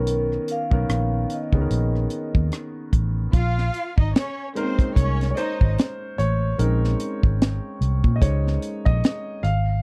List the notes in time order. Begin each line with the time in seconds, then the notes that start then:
Already playing: B1 D#3 B3 C#4 A#4
0.07 closed hi-hat
0.32 cross-stick
0.48 F5, closed hi-hat
0.71 B1 D#3 B3 C#4 A#4, kick
0.89 A#1, cross-stick, closed hi-hat
1.30 D#5, closed hi-hat
1.52 C#2 D#3 B3 C#4 G#4, kick
1.61 A#4
1.71 A#1, closed hi-hat
1.96 cross-stick
2.10 closed hi-hat
2.35 D#2, kick
2.52 cross-stick, closed hi-hat
2.93 A1, kick, closed hi-hat
3.33 A#1 F4 F5, kick, closed hi-hat
3.58 snare
3.74 closed hi-hat
3.98 G#1 D#4 D#5, kick
4.15 C#4 C#5, snare, closed hi-hat
4.55 G#3 A#3 C4 C#4 D#4 A#4 C5, closed hi-hat
4.79 kick, closed hi-hat
4.96 C2 C#4 C#5, kick, closed hi-hat
5.21 snare, closed hi-hat
5.31 C#5
5.37 D#4 C5 D#5, closed hi-hat
5.61 G#1, kick
5.78 snare, closed hi-hat
6.18 A1 C#5, closed hi-hat
6.58 A#1 G#3 C4 C#4 D#4 A#4, closed hi-hat
6.84 snare
7.00 closed hi-hat
7.23 G#1, kick
7.42 snare, closed hi-hat
7.81 C2, closed hi-hat
8.04 A#2, kick
8.16 D#5
8.21 C#2 G#3 C#4 D#4 C5 C#5, kick, closed hi-hat
8.47 snare
8.62 closed hi-hat
8.85 A#1 D#5, kick
9.04 snare, closed hi-hat
9.43 G#1 F5, closed hi-hat